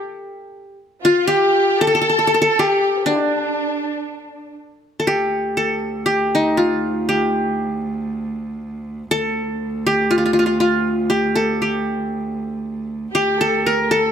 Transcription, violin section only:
1.03 F4
1.29 G4
1.79 A4
2.53 G4
3.04 D4
13.12 G4
13.38 A4
13.64 A#4
13.82 A#4
13.88 A4

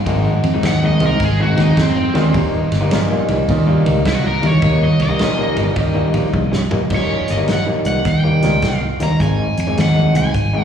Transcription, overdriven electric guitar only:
0.67 F#5
0.86 D#5
1.06 A#4
1.24 G#4
1.43 F#4
1.62 D#4
1.82 C4
4.08 F#4
4.26 A#4
4.46 C#5
4.84 D#5
5.03 D#5
6.96 C#5
7.31 D#5
7.53 F#5
7.88 F#5
8.08 G5
8.77 F5
9.03 A#5
9.22 G#5
9.60 G#5
9.81 F#5
10.17 G#5
10.62 F#5

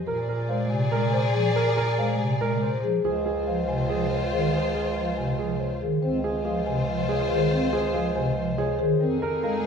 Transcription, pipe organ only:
0.49 G#3
0.71 C3
0.92 G#3
1.34 F3
1.98 G#3
2.19 C3
2.41 G#3
2.84 F3
3.48 F3
3.69 C3
3.89 F3
4.33 D#3
4.97 F3
5.18 C3
5.39 F3
5.82 D#3
6.03 C4
6.46 F3
6.67 C3
6.89 F3
7.31 D#3
7.52 C4
7.95 F3
8.16 C3
8.37 F3
8.80 D#3
9.01 C4
9.44 G#3

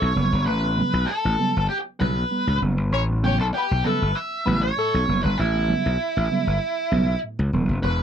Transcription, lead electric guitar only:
Already playing: C#5
0.46 B4
1.06 A4
1.69 G4
2.00 B4
3.24 G4
3.40 A4
3.54 G4
3.84 B4
4.15 E5
4.62 C#5
5.23 B4
5.38 E4
7.83 B4

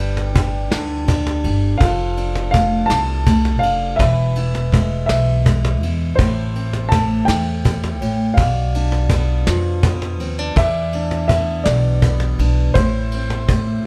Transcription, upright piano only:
Already playing: G5
1.78 F5
2.51 F5
2.86 A5
3.59 F5
3.96 E5
5.06 E5
6.15 C5
6.89 A5
7.25 G5
8.34 F5
10.58 E5
11.28 E5
11.64 D5
12.74 C5

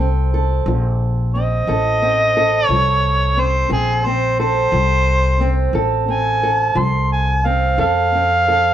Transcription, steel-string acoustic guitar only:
Already playing: F2 A4
0.00 C4
0.34 A4
0.68 F3
1.35 C4
1.68 F2 A4
2.02 C4
2.37 A4
2.70 F3
3.37 C4
3.70 F2 C4
4.06 C4
4.40 A4
4.73 F3
5.40 C4
5.74 F2 A4
6.08 C4
6.43 A4
6.75 F3
7.45 C4
7.78 F2 A4
8.14 C4
8.48 A4

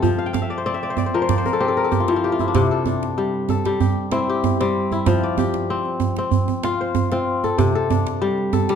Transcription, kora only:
Already playing: C4 D4 A4
0.02 F3
0.19 F5
0.26 G5
0.33 F5
0.42 E5
0.50 D5
0.58 C5
0.66 C4 D5
0.74 E5
0.83 D5
0.90 C5
0.98 D5
1.06 C5
1.14 F3 A#4
1.22 C5
1.30 D5
1.38 C5
1.46 A#4
1.53 A4
1.60 C4 G4
1.68 A4
1.77 A#4
1.84 A4
1.91 G4
2.00 F4
2.08 F3 E4
2.16 F4
2.24 G4
2.32 F4
2.40 E4
2.48 D4
2.55 C3
2.71 A4
2.87 D4
3.18 G3
3.50 A4
3.66 G3
3.81 G4
4.12 C4 E4
4.30 G4
4.61 G3 C4
4.92 E4
5.07 F3
5.23 D5
5.39 G4
5.70 C4
6.18 C4
6.64 F4
6.81 C5
7.12 C4 F4
7.44 A4
7.58 C3
7.75 A4
7.90 D4
8.22 G3
8.53 A4
8.70 G3

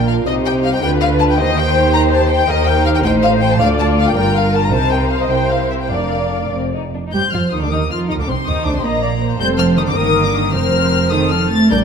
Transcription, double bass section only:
Already playing: A#1
0.26 C2
0.82 D2
1.39 D#2
2.49 D#2
3.05 A1
3.61 D2
4.17 G1
4.73 C2
5.31 C2
5.91 F1
6.53 F1
7.14 G2
7.33 F2
7.53 D#2
7.62 D2
7.72 D#2
7.90 F2
8.10 D#2
8.19 D2
8.28 C2
8.47 D#2
8.65 D2
8.74 C2
8.84 A#1
9.39 F1
9.96 G1
10.54 F1
11.71 A#1

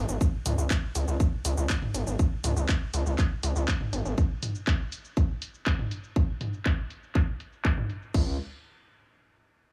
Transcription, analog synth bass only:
0.09 G#1
0.46 C#2
0.58 C#2
0.95 C#2
1.08 C#2
1.45 C#2
1.57 C#2
1.94 G#1
2.07 G#1
2.44 C#2
2.56 C#2
2.94 C#2
3.06 C#2
3.43 C#2
3.56 C#2
3.93 G#1
4.05 G#1
8.14 C#2

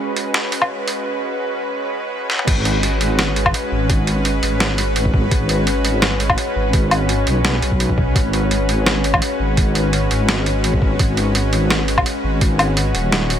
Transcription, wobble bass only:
2.47 G#1
3.72 G#1
4.43 G#1
5.14 G#1
5.31 G#1
6.56 G#1
7.27 B1
7.62 B1
8.15 G#1
9.40 G#1
10.11 G#1
10.82 G#1
10.99 G#1
12.24 G#1
12.95 D#1

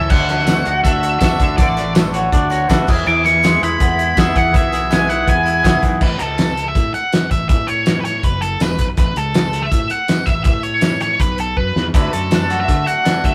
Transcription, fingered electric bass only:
0.11 D2
0.67 D2
0.85 D2
1.22 D2
1.40 D2
1.58 A1
2.33 D2
2.70 D2
2.88 E2
3.07 E2
3.62 E2
3.81 E2
4.17 E2
4.36 E2
4.54 B1
5.27 E2
5.65 C#2
5.83 B1
6.01 A1
6.21 C#2
6.75 A2
7.31 A1
7.49 A2
8.23 F#1
8.61 E1
8.79 B1
8.98 A1
9.16 C#2
9.72 A2
10.27 A1
10.45 A2
11.20 B1
11.57 F#2
11.76 E2
11.94 D2
12.13 F#2
12.69 D3
13.24 D2

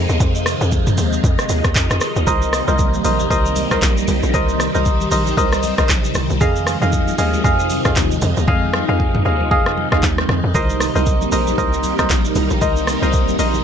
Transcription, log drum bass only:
0.09 D#2
0.20 F2
0.61 F2
0.98 D#2
1.24 F2
1.50 D#2
1.65 D#2
1.76 F2
1.90 F2
2.16 D#2
2.27 C2
2.68 C2
3.05 A#1
3.31 C2
3.72 C2
3.82 A#1
4.08 C2
4.23 A#1
4.34 C2
4.75 C2
5.12 A#1
5.37 C2
5.79 A#1
5.89 A#1
6.15 C2
6.30 C2
6.41 F2
6.82 F2
7.19 D#2
7.44 F2
7.85 F2
7.96 D#2
8.22 F2
8.37 D#2
8.48 F2
8.89 F2
9.26 D#2
9.51 F2
9.92 D#2
10.03 D#2
10.29 F2
10.44 F2
10.55 C2
10.96 C2
11.32 A#1
11.58 C2
11.99 C2
12.10 A#1
12.36 C2
12.51 A#1
12.62 C2
13.02 C2
13.39 A#1

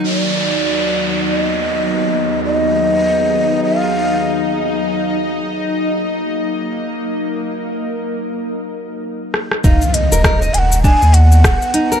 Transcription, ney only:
0.05 C#5
0.18 D5
1.24 D#5
2.45 D#5
3.64 F5
9.65 F5
9.94 D#5
10.54 G#5
10.58 F#5
10.83 G#5
11.14 F#5

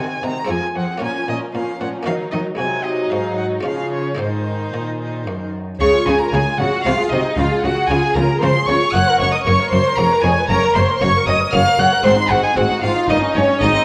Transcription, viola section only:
Already playing: D#3
0.23 D#3
0.49 F3
0.74 F3
1.00 F3
1.26 F3
1.52 F3
1.79 F3
2.04 F#3
2.32 F#3
2.57 F#3
3.65 F3
4.19 D#3
5.80 G#4
5.93 F4
6.07 G#4
6.20 F4
6.34 G#4
6.47 F4
6.60 G#4
6.73 F4
6.86 F#4
6.99 G#4
7.12 F#4
7.25 G#4
7.38 F4
7.51 G#4
7.64 F4
7.77 G#4
7.89 F4
8.03 G#4
8.16 F4
8.29 G#4
8.43 F4
8.56 G#4
8.70 F4
8.82 G#4
8.95 C#5
9.08 A#4
9.21 C#5
9.34 A#4
9.47 C#5
9.59 A#4
9.73 C#5
9.86 A#4
9.99 C#5
10.11 B4
10.25 C#5
10.38 B4
10.51 C#5
10.63 A#4
10.76 C#5
10.90 A#4
11.02 C#5
11.16 A#4
11.28 C#5
11.41 A#4
11.55 C#5
11.66 A#4
11.79 C#5
11.92 A#4
12.04 C4
12.18 D#4
12.30 C4
12.42 D#4
12.55 C4
12.69 D#4
12.82 C4
12.95 D#4
13.08 D#4
13.21 C#4
13.34 D#4
13.47 C#4
13.61 D#4
13.74 C4

